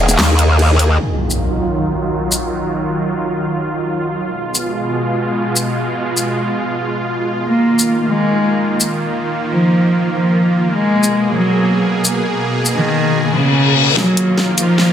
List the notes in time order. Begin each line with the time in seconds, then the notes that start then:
Already playing: D#3 A#3 G#4
0.00 D#1
0.09 closed hi-hat, shaker
0.19 D#2, snare, clap, crash
0.39 closed hi-hat
0.59 crash
0.79 open hi-hat
1.00 D#3 F#3 F4, impact
1.30 shaker
2.32 shaker
4.24 B2 G#3
4.55 shaker
5.56 shaker
6.17 shaker
7.48 D#3 A#3
7.79 shaker
8.09 G#3
8.80 shaker
9.51 F3
10.12 F3
10.73 B2 G#3 G#4
11.03 shaker
11.33 F#3
12.05 shaker
12.65 shaker
12.75 D#3
13.16 reverse cymbal
13.36 C#3
13.97 D#3 F#3 A#3 F4, snare, riser
14.17 closed hi-hat
14.38 snare
14.58 F3, closed hi-hat, shaker
14.78 snare